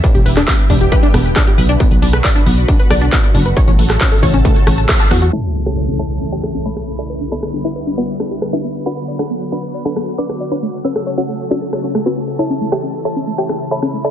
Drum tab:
HH |xxoxxxoxxxoxxxox|xxoxxxoxxxoxxxox|xxoxxooxxxoxxxox|----------------|
CP |---xx-------x---|----x-------x---|---xx-------x---|----------------|
SD |---r------r-r---|---r------r-----|---r------r-r-r-|---r------r--r--|
BD |o---o-o-o---o---|o---o---o---o---|o---o-o-o---o---|----------------|

HH |----------------|----------------|----------------|----------------|
CP |----------------|----------------|----------------|----------------|
SD |---r------r-r---|---r------r--r--|---r------r-r---|---r------r--r--|
BD |----------------|----------------|----------------|----------------|